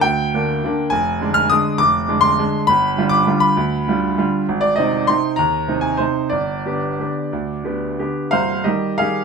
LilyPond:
<<
  \new Staff \with { instrumentName = "Grand piano" } { \time 3/4 \key g \minor \tempo 4 = 198 g''2. | \key g \phrygian aes''4. f'''8 ees'''4 | d'''4. c'''4. | b''4. d'''4 b''8~ |
b''2~ b''8 r8 | r8 d''8 ees''4 c'''4 | bes''4. aes''8 c''4 | d''2.~ |
d''2~ d''8 r8 | <c'' f''>4 <g' ees''>4 <aes' f''>4 | }
  \new Staff \with { instrumentName = "Grand piano" } { \clef bass \time 3/4 \key g \minor d,4 <d bes d'>4 <d bes d'>4 | \key g \phrygian f,,4 <d aes d'>4 <d aes d'>4 | f,,4 <d aes d'>4 <d aes d'>4 | g,,4 <d g f'>4 <d g f'>4 |
d,4 <d g f'>4 <d g f'>4 | aes,,4 <c c' ees'>4 <c c' ees'>4 | ees,4 <c c' ees'>4 <c c' ees'>4 | g,,4 <d b g'>4 <d b g'>4 |
d,4 <d b g'>4 <d b g'>4 | <c,, c,>4 <ees g>4 <ees g g'>4 | }
>>